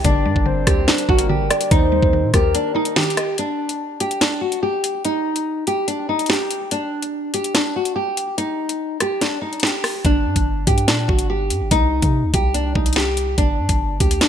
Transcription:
0.00 3.34 G4 medium
0.04 0.27 G1 loud
0.04 0.44 D3 medium
0.04 1.70 G3 medium
0.04 0.63 D4 loud
0.04 3.35 A#4 medium
0.04 0.44 D5 loud
0.04 1.70 D5 medium
0.04 kick loud
0.04 closed hi-hat medium
0.25 0.35 G2 loud
0.25 1.30 G3 medium
0.36 0.66 G1 loud
0.36 kick medium
0.46 1.28 D3 medium
0.46 1.05 C5 medium
0.67 0.87 D2 loud
0.67 0.86 G4 medium
0.67 kick loud
0.67 cross-stick medium
0.67 closed hi-hat medium
0.88 1.07 D4 medium
0.88 snare loud
0.88 closed hi-hat soft
0.98 closed hi-hat medium
1.09 1.31 G1 loud
1.09 1.71 D4 medium
1.09 1.28 F#4 medium
1.09 1.48 A#4 medium
1.09 kick loud
1.19 closed hi-hat medium
1.29 1.42 A#1 loud
1.29 1.71 D3 medium
1.29 1.69 G4 medium
1.40 1.50 G1 loud
1.50 1.70 D5 medium
1.50 1.71 D5 medium
1.50 cross-stick loud
1.50 closed hi-hat medium
1.61 closed hi-hat medium
1.71 2.01 D#2 loud
1.71 2.12 D#3 medium
1.71 3.36 D#3 medium
1.71 2.30 D#4 loud
1.71 3.36 D#4 medium
1.71 2.30 C5 loud
1.71 kick loud
1.71 closed hi-hat medium
1.92 2.96 G3 medium
2.03 2.25 D#2 loud
2.03 kick medium
2.13 2.95 D#3 medium
2.23 2.33 A#2 loud
2.34 2.55 D#2 loud
2.34 2.53 G4 medium
2.34 2.93 A#4 medium
2.34 kick loud
2.34 cross-stick medium
2.34 closed hi-hat medium
2.55 2.74 D4 medium
2.55 closed hi-hat medium
2.75 2.94 D#4 medium
2.75 3.38 D#4 medium
2.85 closed hi-hat medium
2.96 3.38 D#3 medium
2.96 3.35 G4 loud
2.96 snare loud
2.96 closed hi-hat soft
3.03 closed hi-hat medium
3.10 closed hi-hat medium
3.17 3.38 D#5 loud
3.17 cross-stick loud
3.17 closed hi-hat medium
3.38 3.97 D4 loud
3.38 closed hi-hat medium
3.69 closed hi-hat medium
4.00 4.19 G4 medium
4.00 closed hi-hat medium
4.11 closed hi-hat medium
4.21 4.40 D4 medium
4.21 snare loud
4.21 closed hi-hat medium
4.41 4.60 F#4 medium
4.52 closed hi-hat medium
4.63 5.02 G4 medium
4.84 closed hi-hat medium
5.05 5.64 D#4 loud
5.05 closed hi-hat medium
5.36 closed hi-hat medium
5.67 5.86 G4 medium
5.67 closed hi-hat medium
5.88 6.07 D4 medium
5.88 closed hi-hat medium
6.09 6.28 D#4 medium
6.19 closed hi-hat medium
6.26 6.69 G4 loud
6.26 snare loud
6.26 closed hi-hat medium
6.33 closed hi-hat medium
6.51 closed hi-hat medium
6.71 7.30 D4 loud
6.71 closed hi-hat medium
7.02 closed hi-hat medium
7.34 7.53 G4 medium
7.34 closed hi-hat medium
7.44 closed hi-hat medium
7.55 7.73 D4 medium
7.55 snare loud
7.55 closed hi-hat medium
7.76 7.94 F#4 medium
7.85 closed hi-hat medium
7.96 8.35 G4 medium
8.17 closed hi-hat medium
8.38 8.97 D#4 loud
8.38 closed hi-hat medium
8.69 closed hi-hat medium
9.00 9.20 G4 medium
9.00 cross-stick medium
9.00 closed hi-hat medium
9.21 9.40 D4 medium
9.21 snare medium
9.21 closed hi-hat medium
9.41 9.61 D#4 medium
9.53 closed hi-hat soft
9.60 10.02 G4 medium
9.60 snare loud
9.60 closed hi-hat medium
9.67 closed hi-hat medium
9.84 cross-stick loud
9.84 open hi-hat medium
10.05 10.27 G1 loud
10.05 10.64 D4 loud
10.05 kick loud
10.05 closed hi-hat medium
10.26 10.35 G2 loud
10.36 10.66 G1 loud
10.36 kick medium
10.36 closed hi-hat medium
10.67 10.89 G2 loud
10.67 10.86 G4 medium
10.67 kick loud
10.67 closed hi-hat medium
10.78 closed hi-hat medium
10.88 11.08 A#2 loud
10.88 11.07 D4 medium
10.88 snare loud
10.88 closed hi-hat medium
11.08 11.52 G1 loud
11.08 11.27 F#4 medium
11.08 kick loud
11.19 closed hi-hat medium
11.30 11.69 G4 medium
11.50 11.62 G2 loud
11.50 closed hi-hat medium
11.61 11.71 G1 loud
11.71 12.01 C2 loud
11.71 12.30 D#4 loud
11.71 kick loud
11.71 closed hi-hat medium
12.02 12.25 C3 loud
12.02 kick medium
12.02 closed hi-hat medium
12.23 12.33 D2 loud
12.34 12.74 C2 loud
12.34 12.53 G4 medium
12.34 kick loud
12.34 closed hi-hat medium
12.54 12.73 D4 medium
12.54 closed hi-hat medium
12.75 13.35 C2 loud
12.75 12.94 D#4 medium
12.75 kick medium
12.86 closed hi-hat medium
12.93 13.35 G4 loud
12.93 snare loud
12.93 closed hi-hat medium
13.00 closed hi-hat medium
13.17 closed hi-hat medium
13.38 13.60 G1 loud
13.38 13.97 D4 loud
13.38 kick loud
13.38 closed hi-hat medium
13.59 13.69 G2 loud
13.69 13.99 G1 loud
13.69 kick medium
13.69 closed hi-hat medium
14.00 14.20 D2 loud
14.00 14.19 G4 medium
14.00 kick loud
14.00 closed hi-hat medium
14.11 closed hi-hat medium
14.21 14.28 D4 medium
14.21 snare loud
14.21 closed hi-hat medium

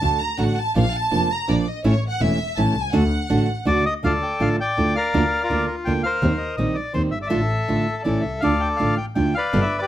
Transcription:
0.00 0.19 D2 medium
0.00 0.19 D3 medium
0.00 0.19 A3 medium
0.00 0.19 D4 medium
0.00 0.20 F#4 medium
0.00 0.21 A5 loud
0.20 0.39 A#5 medium
0.38 0.55 A1 medium
0.38 0.55 D3 medium
0.38 0.56 A3 medium
0.38 0.56 D4 medium
0.38 0.56 F#4 medium
0.38 0.58 F#5 medium
0.58 0.76 A5 medium
0.75 0.91 A#1 medium
0.75 0.84 F3 medium
0.75 0.85 A#3 medium
0.75 0.85 D4 medium
0.75 0.85 F4 medium
0.75 0.93 F5 medium
0.95 1.31 A5 loud
1.11 1.27 F1 medium
1.11 1.28 F3 medium
1.11 1.28 A#3 medium
1.11 1.29 D4 medium
1.11 1.28 F4 medium
1.31 1.49 A#5 medium
1.48 1.64 A#1 medium
1.48 1.65 F3 medium
1.48 1.65 A#3 medium
1.48 1.65 D4 medium
1.48 1.65 F4 medium
1.48 1.67 D5 medium
1.67 1.85 D#5 medium
1.84 2.00 A1 medium
1.84 1.93 E3 medium
1.84 1.93 A3 medium
1.84 1.93 C#4 medium
1.84 1.93 E4 medium
1.84 2.02 C#5 medium
2.08 2.20 F#5 medium
2.20 2.36 E1 medium
2.20 2.37 E3 medium
2.20 2.38 A3 medium
2.20 2.37 C#4 medium
2.20 2.38 E4 medium
2.20 2.57 E5 medium
2.57 2.73 A1 medium
2.57 2.74 E3 medium
2.57 2.74 A3 medium
2.57 2.74 C#4 medium
2.57 2.74 E4 medium
2.57 2.81 A5 medium
2.76 2.94 C2 medium
2.81 2.93 G#5 medium
2.93 3.09 D2 medium
2.93 3.02 D3 medium
2.93 3.02 A3 medium
2.93 3.02 D4 loud
2.93 3.02 F#4 medium
2.93 3.82 F#5 medium
3.30 3.46 A1 medium
3.30 3.47 D3 medium
3.30 3.47 A3 medium
3.30 3.47 D4 medium
3.30 3.47 F#4 medium
3.65 3.83 D2 medium
3.65 3.83 D3 medium
3.65 3.84 A3 medium
3.65 3.84 D4 medium
3.65 3.84 F#4 medium
3.65 3.85 D5 loud
3.86 3.94 D#5 loud
4.03 4.20 D2 medium
4.03 4.13 D3 medium
4.03 4.13 A3 medium
4.03 4.13 D4 medium
4.03 4.13 F4 medium
4.03 4.56 A4 medium
4.03 4.56 D5 medium
4.03 4.13 F5 medium
4.23 4.42 G5 medium
4.40 4.56 A1 medium
4.40 4.57 D3 medium
4.40 4.57 A3 medium
4.40 4.58 D4 medium
4.40 4.58 F4 medium
4.40 4.49 F5 medium
4.60 4.96 D5 medium
4.60 4.94 G5 medium
4.77 4.93 D2 medium
4.77 4.94 D3 medium
4.77 4.95 A3 medium
4.77 4.95 D4 medium
4.77 4.95 F4 medium
4.96 5.42 A#4 medium
4.96 5.40 D5 medium
4.96 5.43 F5 medium
5.14 5.30 D2 medium
5.14 5.23 D3 medium
5.14 5.23 A#3 medium
5.14 5.23 D4 medium
5.14 5.23 F4 medium
5.41 5.93 F4 medium
5.41 5.66 A#4 medium
5.41 5.67 D5 medium
5.50 5.66 D2 medium
5.50 5.67 D3 medium
5.50 5.67 A#3 medium
5.50 5.67 D4 medium
5.50 5.67 F4 medium
5.67 5.76 A#4 medium
5.85 6.02 D2 soft
5.85 6.03 D3 medium
5.85 6.03 A#3 medium
5.85 6.04 D4 medium
5.85 6.04 F4 medium
5.85 6.02 G5 medium
6.03 6.56 A#4 medium
6.03 6.56 C5 medium
6.03 6.37 F5 medium
6.22 6.38 D#2 medium
6.22 6.31 D#3 medium
6.22 6.31 G3 medium
6.22 6.32 C4 medium
6.37 6.55 D#5 medium
6.56 6.74 A#1 medium
6.56 6.75 D#3 medium
6.56 6.75 G3 medium
6.56 6.76 C4 medium
6.56 6.76 D#5 medium
6.75 6.93 D5 medium
6.94 7.11 D#2 medium
6.94 7.11 D#3 medium
6.94 7.11 G3 medium
6.94 7.12 C4 medium
6.94 7.02 C5 medium
7.11 7.32 G1 soft
7.11 7.19 E5 medium
7.22 7.28 D5 medium
7.27 7.40 D3 medium
7.27 7.40 A3 medium
7.27 7.40 D4 medium
7.27 7.40 F4 medium
7.27 8.03 A4 medium
7.27 8.01 E5 medium
7.33 7.48 A1 medium
7.68 7.85 A1 medium
7.68 7.85 D3 medium
7.68 7.86 A3 medium
7.68 7.86 D4 medium
7.68 7.86 F4 medium
8.03 8.22 A1 medium
8.03 8.22 E3 medium
8.03 8.23 A3 medium
8.03 8.23 C#4 medium
8.03 8.23 E4 medium
8.03 8.41 A4 medium
8.03 8.22 D5 medium
8.21 8.42 E5 medium
8.26 8.44 C2 soft
8.40 8.59 D2 medium
8.40 8.52 D3 medium
8.40 8.52 A3 medium
8.40 8.52 D4 medium
8.40 8.52 F4 medium
8.40 8.95 A4 medium
8.40 8.95 D5 medium
8.40 8.61 F5 medium
8.60 8.69 G5 medium
8.76 8.97 D3 soft
8.76 8.97 A3 medium
8.76 8.97 D4 medium
8.76 8.97 F4 medium
8.76 8.97 F5 medium
8.82 8.97 A1 medium
8.97 9.06 G5 medium
9.15 9.33 D2 medium
9.15 9.33 D3 medium
9.15 9.33 A3 medium
9.15 9.33 D4 medium
9.15 9.33 F4 medium
9.15 9.35 G5 medium
9.35 9.80 B4 medium
9.35 9.77 D5 medium
9.35 9.60 F5 medium
9.53 9.69 G1 medium
9.53 9.62 B2 medium
9.53 9.62 D3 medium
9.53 9.62 G3 medium
9.53 9.62 B3 medium
9.53 9.62 G4 medium
9.62 9.79 E5 medium
9.79 9.87 G4 medium
9.79 9.87 B4 medium
9.79 9.87 D5 medium

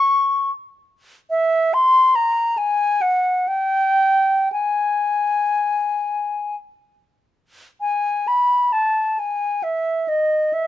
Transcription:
0.00 0.51 C#6 medium
1.30 1.75 E5 medium
1.74 2.17 C6 medium
2.15 2.59 A#5 medium
2.58 3.03 G#5 medium
3.02 3.49 F#5 medium
3.48 4.52 G5 medium
4.52 6.56 G#5 medium
7.81 8.29 G#5 medium
8.28 8.74 B5 medium
8.72 9.21 A5 soft
9.19 9.65 G#5 soft
9.63 10.10 E5 soft
10.08 10.55 D#5 soft
10.53 10.67 E5 medium

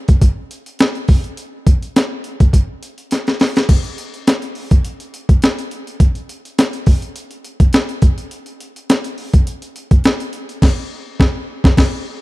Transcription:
0.08 kick medium
0.08 closed hi-hat soft
0.22 kick medium
0.22 closed hi-hat medium
0.51 closed hi-hat medium
0.66 closed hi-hat medium
0.79 snare loud
0.79 closed hi-hat medium
0.95 closed hi-hat soft
1.08 kick loud
1.08 open hi-hat medium
1.24 closed hi-hat soft
1.37 closed hi-hat medium
1.67 kick loud
1.67 closed hi-hat medium
1.82 closed hi-hat soft
1.96 snare loud
1.96 closed hi-hat medium
2.24 closed hi-hat medium
2.40 kick loud
2.40 closed hi-hat soft
2.53 kick medium
2.53 closed hi-hat medium
2.83 closed hi-hat medium
2.98 closed hi-hat medium
3.11 snare medium
3.11 closed hi-hat medium
3.27 snare medium
3.27 closed hi-hat soft
3.40 snare medium
3.40 open hi-hat medium
3.56 snare medium
3.56 closed hi-hat soft
3.69 kick loud
3.69 closed hi-hat medium
3.69 crash medium
3.84 closed hi-hat soft
3.98 closed hi-hat medium
4.14 closed hi-hat soft
4.27 snare loud
4.27 closed hi-hat loud
4.42 closed hi-hat medium
4.55 open hi-hat medium
4.71 kick medium
4.71 closed hi-hat soft
4.85 closed hi-hat medium
5.00 closed hi-hat medium
5.14 closed hi-hat medium
5.29 kick loud
5.29 closed hi-hat soft
5.42 snare loud
5.42 closed hi-hat medium
5.59 closed hi-hat medium
5.71 closed hi-hat medium
5.87 closed hi-hat medium
6.00 kick loud
6.00 closed hi-hat medium
6.15 closed hi-hat soft
6.29 closed hi-hat medium
6.45 closed hi-hat medium
6.58 snare loud
6.58 closed hi-hat medium
6.73 closed hi-hat medium
6.86 kick medium
6.86 open hi-hat medium
7.02 closed hi-hat soft
7.16 closed hi-hat medium
7.31 closed hi-hat medium
7.45 closed hi-hat medium
7.60 kick medium
7.60 closed hi-hat medium
7.73 snare loud
7.73 closed hi-hat medium
7.89 closed hi-hat medium
8.02 kick loud
8.02 closed hi-hat medium
8.18 closed hi-hat medium
8.31 closed hi-hat medium
8.46 closed hi-hat soft
8.60 closed hi-hat medium
8.76 closed hi-hat soft
8.90 snare loud
8.90 closed hi-hat loud
9.04 closed hi-hat medium
9.18 open hi-hat medium
9.33 kick loud
9.33 closed hi-hat medium
9.47 closed hi-hat medium
9.62 closed hi-hat medium
9.76 closed hi-hat medium
9.91 kick loud
9.91 closed hi-hat medium
10.04 snare loud
10.04 closed hi-hat medium
10.20 closed hi-hat medium
10.33 closed hi-hat medium
10.49 closed hi-hat soft
10.62 kick loud
10.62 snare loud
10.62 crash medium
11.20 kick loud
11.20 snare loud
11.64 kick loud
11.64 snare loud
11.77 kick loud
11.77 snare loud
11.77 crash medium

